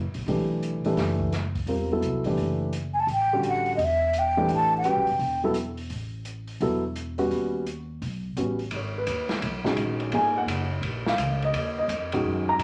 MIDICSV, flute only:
0, 0, Header, 1, 2, 480
1, 0, Start_track
1, 0, Tempo, 351906
1, 383, Time_signature, 4, 2, 24, 8
1, 17234, End_track
2, 0, Start_track
2, 0, Title_t, "Flute"
2, 0, Program_c, 0, 73
2, 4007, Note_on_c, 0, 80, 67
2, 4090, Note_on_c, 0, 81, 73
2, 4111, Note_off_c, 0, 80, 0
2, 4239, Note_off_c, 0, 81, 0
2, 4260, Note_on_c, 0, 79, 94
2, 4686, Note_off_c, 0, 79, 0
2, 4759, Note_on_c, 0, 78, 94
2, 5113, Note_off_c, 0, 78, 0
2, 5135, Note_on_c, 0, 75, 59
2, 5244, Note_on_c, 0, 76, 86
2, 5264, Note_off_c, 0, 75, 0
2, 5713, Note_on_c, 0, 79, 83
2, 5733, Note_off_c, 0, 76, 0
2, 6164, Note_off_c, 0, 79, 0
2, 6209, Note_on_c, 0, 81, 94
2, 6462, Note_off_c, 0, 81, 0
2, 6520, Note_on_c, 0, 79, 89
2, 7387, Note_off_c, 0, 79, 0
2, 17234, End_track
0, 0, End_of_file